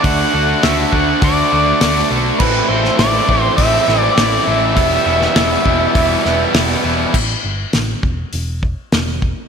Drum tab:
CC |----------------|x---------------|----------------|x---------------|
HH |o---o---o---o---|----o---o---o---|o---o---o---o---|----o---o---o---|
SD |----o-------o---|---oo-----o-o---|---oo-----o-o---|----o-------o---|
BD |o-----o-o-------|o-----o-o-------|o-----o-o-------|o-----o---o---o-|